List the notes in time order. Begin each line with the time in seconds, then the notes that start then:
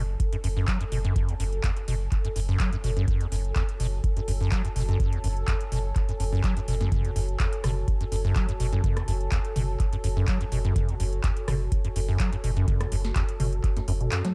Already playing: F#1 F#4 A4 C#5 G#5
0.20 kick, closed hi-hat
0.33 F#2, closed hi-hat
0.44 F#1 F#2, open hi-hat
0.57 F#2
0.68 F#3, kick, clap, closed hi-hat
0.81 F#2, closed hi-hat
0.92 F#1 B2, open hi-hat
1.05 F#2, closed hi-hat
1.16 F#2, kick, closed hi-hat
1.29 E2, closed hi-hat
1.40 F#1 F#2, open hi-hat
1.53 closed hi-hat
1.64 E2, kick, clap, closed hi-hat
1.77 closed hi-hat
1.88 F#1 B2, open hi-hat
2.12 kick, clap, closed hi-hat
2.25 F#2, closed hi-hat
2.36 F#1 F#2, open hi-hat
2.49 F#2
2.60 F#3, kick, clap, closed hi-hat
2.73 F#2, closed hi-hat
2.84 F#1 B2, open hi-hat
2.97 F#2, closed hi-hat
3.08 F#2, kick, closed hi-hat
3.21 E2, closed hi-hat
3.32 F#1 F#2, open hi-hat
3.45 closed hi-hat
3.56 E2, kick, clap, closed hi-hat
3.69 closed hi-hat
3.80 F#1 B2, open hi-hat
4.04 kick, closed hi-hat
4.17 F#2, closed hi-hat
4.28 F#1 F#2, open hi-hat
4.41 F#2
4.52 F#3, kick, clap, closed hi-hat
4.65 F#2, closed hi-hat
4.76 F#1 B2, open hi-hat
4.89 F#2, closed hi-hat
5.00 kick, closed hi-hat
5.13 E2, closed hi-hat
5.24 F#1 F#2, open hi-hat
5.37 closed hi-hat
5.48 E2, kick, clap, closed hi-hat
5.61 closed hi-hat
5.72 F#1 B2, open hi-hat
5.96 kick, clap, closed hi-hat
6.09 F#2, closed hi-hat
6.20 F#1 F#2, open hi-hat
6.33 F#2
6.44 F#3, kick, clap, closed hi-hat
6.57 F#2, closed hi-hat
6.68 F#1 B2, open hi-hat
6.81 F#2, snare, closed hi-hat
6.92 F#2, kick, closed hi-hat, mid tom
7.05 E2, closed hi-hat
7.16 F#1 F#2, open hi-hat
7.29 closed hi-hat
7.40 E2, kick, clap, closed hi-hat
7.53 closed hi-hat
7.64 F#1 B2, cross-stick, open hi-hat, mid tom
7.88 kick, closed hi-hat
8.01 F#2, closed hi-hat
8.12 F#1 F#2, open hi-hat
8.25 F#2
8.36 F#3, kick, clap, closed hi-hat
8.49 F#2, closed hi-hat
8.60 F#1 B2, open hi-hat
8.73 F#2, closed hi-hat
8.84 F#2, kick, closed hi-hat, mid tom
8.97 E2, cross-stick, closed hi-hat
9.08 F#1 F#2, open hi-hat
9.21 closed hi-hat
9.32 E2, kick, clap, closed hi-hat
9.45 closed hi-hat
9.56 F#1 B2, open hi-hat, mid tom
9.80 kick, clap, closed hi-hat
9.93 F#2, closed hi-hat
10.04 F#1 F#2, open hi-hat
10.17 F#2
10.28 F#3, kick, clap, closed hi-hat
10.41 F#2, closed hi-hat
10.52 F#1 B2, open hi-hat
10.65 F#2, closed hi-hat
10.76 kick, closed hi-hat, mid tom
10.89 E2, closed hi-hat
11.00 F#1 F#2, open hi-hat
11.13 closed hi-hat
11.24 E2, kick, clap, closed hi-hat
11.37 closed hi-hat
11.48 F#1 B2, cross-stick, open hi-hat, mid tom
11.72 kick, closed hi-hat
11.85 F#2, closed hi-hat
11.96 F#1 F#2, open hi-hat
12.09 F#2
12.20 F#3, kick, clap, closed hi-hat
12.33 F#2, closed hi-hat
12.44 F#1 B2, open hi-hat
12.57 F#2, closed hi-hat
12.68 kick, closed hi-hat, mid tom
12.81 E2, cross-stick, closed hi-hat
12.92 F#1 F#2, open hi-hat
13.05 snare, closed hi-hat
13.16 E2, kick, clap, closed hi-hat
13.29 closed hi-hat
13.40 F#1 B2, open hi-hat, mid tom
13.53 closed hi-hat
13.64 kick, clap, closed hi-hat
13.77 F#2, snare, closed hi-hat
13.88 F#1 F#2, open hi-hat
14.01 B2, closed hi-hat
14.12 F#2, clap, closed hi-hat
14.25 F#3, snare, closed hi-hat